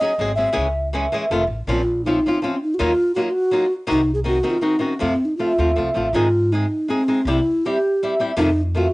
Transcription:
0.00 0.12 F#3 medium
0.00 0.12 C#4 medium
0.00 0.13 D#4 medium
0.00 0.13 G#4 medium
0.00 0.34 D#5 medium
0.18 0.43 G#1 medium
0.18 0.30 F#3 medium
0.18 0.31 G#3 medium
0.18 0.31 C4 medium
0.18 0.31 G#4 medium
0.35 0.49 F#3 soft
0.35 0.49 G#3 medium
0.35 0.49 C4 medium
0.35 0.49 G#4 medium
0.35 0.88 E5 medium
0.52 1.05 C#2 medium
0.52 0.66 C#3 medium
0.52 0.66 E3 medium
0.52 0.66 G#3 medium
0.52 0.66 C#4 medium
0.52 0.66 G#4 medium
0.93 1.05 E3 medium
0.93 1.05 G#3 medium
0.93 1.05 C#4 medium
0.93 1.06 G#4 medium
1.12 1.24 E3 medium
1.12 1.24 G#3 medium
1.12 1.24 C#4 medium
1.12 1.25 G#4 medium
1.30 1.47 F1 medium
1.30 1.43 D#3 medium
1.30 1.43 A3 medium
1.30 1.43 C4 medium
1.30 1.43 F4 medium
1.47 1.66 A1 medium
1.67 2.16 A#1 medium
1.67 1.80 A#2 medium
1.67 1.80 F3 medium
1.67 1.80 C4 medium
1.67 1.80 C#4 medium
1.67 1.80 F4 medium
1.67 2.04 F4 medium
2.05 2.18 F3 medium
2.05 2.18 C4 medium
2.05 2.18 C#4 medium
2.05 2.45 D#4 medium
2.05 2.18 F4 medium
2.26 2.37 F3 soft
2.26 2.38 C4 medium
2.26 2.37 C#4 medium
2.26 2.38 F4 medium
2.42 2.54 F3 medium
2.42 2.55 C4 medium
2.42 2.55 C#4 medium
2.42 2.62 C#4 medium
2.42 2.55 F4 medium
2.63 2.76 D#4 medium
2.74 2.81 F#4 medium
2.79 2.92 D#2 loud
2.79 2.91 D#3 medium
2.79 2.91 F#3 medium
2.79 2.91 A#3 medium
2.79 2.91 D#4 medium
2.79 3.14 F4 loud
2.79 2.92 F4 medium
3.15 3.28 F#3 medium
3.15 3.28 A#3 medium
3.15 3.28 D#4 medium
3.15 3.29 F4 medium
3.15 3.24 F#4 medium
3.22 3.32 F4 medium
3.31 3.72 F#4 loud
3.51 3.64 F#3 medium
3.51 3.65 A#3 medium
3.51 3.65 D#4 medium
3.51 3.65 F4 medium
3.87 4.38 C2 medium
3.87 4.00 C3 medium
3.87 4.00 D#3 medium
3.87 4.00 C4 medium
3.87 4.00 D#4 medium
3.87 4.13 D#4 loud
3.87 4.00 F#4 medium
4.14 4.20 G#4 medium
4.24 4.37 D#3 medium
4.24 4.37 C4 medium
4.24 4.37 D#4 medium
4.24 4.38 F#4 medium
4.24 4.52 F#4 loud
4.43 4.56 D#3 medium
4.43 4.56 C4 medium
4.43 4.56 D#4 medium
4.43 4.56 F#4 medium
4.50 4.64 F4 medium
4.61 4.74 D#3 medium
4.61 4.75 C4 medium
4.61 4.75 D#4 medium
4.61 4.82 D#4 medium
4.61 4.75 F#4 medium
4.79 4.92 D#3 medium
4.79 4.92 C4 medium
4.79 5.00 C#4 medium
4.79 4.93 D#4 soft
4.79 4.93 F#4 medium
4.99 5.12 F2 medium
4.99 5.14 F2 medium
4.99 5.13 C3 medium
4.99 5.13 F3 medium
4.99 5.13 A3 medium
4.99 5.13 C4 medium
4.99 5.26 C4 medium
4.99 5.13 F4 medium
5.25 5.36 D#4 medium
5.37 5.51 F3 medium
5.37 5.51 A3 medium
5.37 5.51 C4 medium
5.37 5.91 F4 medium
5.37 5.51 F4 medium
5.58 5.75 D#2 medium
5.58 5.70 F3 soft
5.58 5.70 A3 soft
5.58 5.70 C4 medium
5.58 5.71 F4 medium
5.76 5.94 C2 medium
5.76 5.88 F3 soft
5.76 5.88 A3 medium
5.76 5.88 C4 medium
5.76 5.89 F4 medium
5.94 6.12 A1 medium
5.94 6.07 F3 soft
5.94 6.07 A3 soft
5.94 6.07 C4 soft
5.94 6.08 F4 medium
6.13 6.62 G#2 medium
6.13 6.26 G#2 medium
6.13 6.26 D#3 medium
6.13 6.26 G#3 medium
6.13 6.27 C4 medium
6.13 6.27 D#4 medium
6.13 6.54 F4 medium
6.13 6.27 G#4 medium
6.52 6.64 G#3 medium
6.52 6.65 C4 medium
6.52 6.91 D#4 medium
6.52 6.64 D#4 medium
6.52 6.65 G#4 medium
6.88 7.01 G#3 medium
6.88 7.27 C4 medium
6.88 7.01 C4 medium
6.88 7.01 D#4 medium
6.88 7.02 G#4 medium
7.08 7.20 G#3 soft
7.08 7.20 C4 medium
7.08 7.20 D#4 soft
7.08 7.20 G#4 soft
7.25 7.38 C2 loud
7.25 7.39 C3 medium
7.25 7.39 G3 medium
7.25 7.39 C4 medium
7.25 7.39 E4 medium
7.25 7.67 E4 medium
7.25 7.39 G4 medium
7.66 7.77 G3 medium
7.66 7.77 C4 medium
7.66 7.77 E4 medium
7.66 8.21 G4 loud
7.66 7.77 G4 medium
8.03 8.13 G3 medium
8.03 8.14 C4 medium
8.03 8.14 E4 medium
8.03 8.14 G4 medium
8.20 8.31 G3 medium
8.20 8.31 C4 medium
8.20 8.31 E4 medium
8.20 8.31 G4 medium
8.37 8.49 F2 medium
8.37 8.86 F2 loud
8.37 8.49 C3 medium
8.37 8.49 D#3 medium
8.37 8.49 A3 medium
8.37 8.49 C4 medium
8.37 8.61 D#4 loud
8.37 8.49 F4 medium
8.75 8.86 D#3 medium
8.75 8.87 A3 medium
8.75 8.87 C4 medium
8.75 8.87 F4 medium
8.75 8.93 F#4 medium

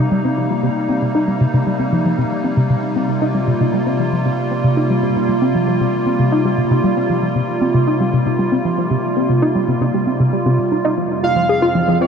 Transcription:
0.00 10.94 C3 medium
0.00 10.94 G3 medium
0.00 10.94 A#3 medium
0.00 2.69 D#4 medium
0.12 0.21 G3 medium
0.25 0.37 C4 medium
0.37 0.49 F3 medium
0.50 0.60 F3 medium
0.63 0.69 C3 medium
0.89 1.01 C4 medium
1.02 1.14 C3 medium
1.15 1.25 D#4 medium
1.28 1.38 G3 medium
1.41 1.47 C3 medium
1.54 1.64 C3 medium
1.67 1.76 G3 medium
1.80 1.92 C4 medium
1.93 2.04 F3 medium
2.06 2.15 F3 medium
2.18 2.24 C3 medium
2.44 2.57 C4 medium
2.57 2.69 C3 medium
2.70 2.76 C3 medium
2.70 10.96 F4 medium
2.96 3.08 C4 medium
3.09 3.21 C3 medium
3.22 3.32 D#4 loud
3.35 3.45 G3 medium
3.48 3.54 C3 medium
3.61 3.70 C3 medium
3.74 3.83 G3 medium
3.87 3.99 C4 medium
4.00 4.11 F3 medium
4.13 4.22 F3 medium
4.26 4.31 C3 medium
4.51 4.64 C4 medium
4.64 4.77 C3 medium
4.77 4.87 D#4 loud
4.90 5.00 G3 medium
5.03 5.09 C3 medium
5.16 5.26 C3 medium
5.29 5.39 G3 medium
5.42 5.54 C4 medium
5.55 5.67 F3 medium
5.68 5.77 F3 medium
5.81 5.87 C3 medium
6.06 6.19 C4 medium
6.20 6.32 C3 medium
6.32 6.42 D#4 loud
6.45 6.55 G3 medium
6.58 6.64 C3 medium
6.71 6.81 C3 medium
6.84 6.94 G3 medium
6.97 7.09 C4 medium
7.10 7.22 F3 medium
7.23 7.33 F3 medium
7.36 7.42 C3 medium
7.61 7.74 C4 medium
7.74 7.87 C3 medium
7.87 7.97 D#4 loud
8.00 8.10 G3 medium
8.13 8.19 C3 medium
8.26 8.36 C3 medium
8.39 8.49 G3 medium
8.52 8.64 C4 medium
8.65 8.77 F3 medium
8.78 8.88 F3 medium
8.91 8.97 C3 medium
9.17 9.29 C4 medium
9.30 9.42 C3 medium
9.42 9.52 D#4 loud
9.55 9.65 G3 medium
9.68 9.74 C3 medium
9.81 9.91 C3 medium
9.94 10.04 G3 medium
10.07 10.20 C4 medium
10.20 10.32 C3 medium
10.33 10.45 G3 medium
10.46 10.58 C3 loud
10.72 10.78 D#4 medium
10.85 10.94 D#4 loud
10.98 12.07 F2 medium
10.98 11.04 F3 medium
10.98 12.07 F3 medium
10.98 12.07 G#3 medium
10.98 12.07 C4 medium
11.23 11.36 F4 medium
11.23 11.97 F5 loud
11.36 11.49 F3 medium
11.49 11.59 G#4 medium
11.62 11.68 F4 loud
11.75 11.81 F3 medium
11.88 11.98 F3 medium
12.01 12.07 C4 medium
12.01 12.07 D#5 loud

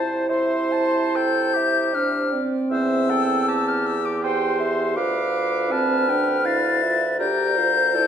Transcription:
0.00 0.26 C3 medium
0.00 1.93 E4 medium
0.00 0.29 C5 medium
0.00 0.31 C5 medium
0.00 0.28 A5 medium
0.29 2.39 C3 medium
0.29 1.17 C5 medium
0.29 0.74 E5 medium
0.29 1.17 C6 medium
0.73 1.18 A5 medium
1.16 1.56 A4 medium
1.16 1.58 G5 medium
1.16 1.96 G6 loud
1.54 2.42 G4 medium
1.54 1.95 E5 medium
1.94 2.34 D4 medium
1.94 2.33 C5 medium
1.94 2.44 F6 medium
2.32 3.98 C4 medium
2.32 2.70 D5 medium
2.71 4.99 E2 medium
2.71 3.11 C5 medium
2.71 3.12 E5 medium
2.71 3.70 E6 loud
3.10 3.50 A4 medium
3.10 3.48 G5 medium
3.48 4.25 G4 medium
3.48 3.97 A5 medium
3.68 3.88 F6 medium
3.86 4.07 E6 loud
4.05 4.23 D6 medium
4.23 4.99 G4 medium
4.23 4.96 C5 medium
4.23 4.58 G5 medium
4.23 4.98 C6 medium
4.60 4.96 E5 medium
4.96 7.20 D2 medium
4.96 5.72 F4 medium
4.96 7.15 B4 medium
4.96 5.73 F5 medium
4.96 5.73 D6 loud
5.70 6.07 C4 medium
5.70 6.11 A5 medium
5.70 6.47 F6 loud
6.08 6.47 D4 medium
6.08 6.47 G5 medium
6.45 6.84 E4 medium
6.45 6.85 F5 medium
6.45 7.19 A6 loud
6.83 7.19 F4 medium
6.83 7.19 E5 medium
7.19 8.07 D2 medium
7.19 7.59 G4 medium
7.19 7.96 A#4 medium
7.19 7.59 D5 medium
7.19 8.07 G6 loud
7.57 7.94 F4 medium
7.57 7.97 C5 medium
7.94 8.07 E4 medium
7.94 8.07 A4 medium
7.94 8.07 D5 medium

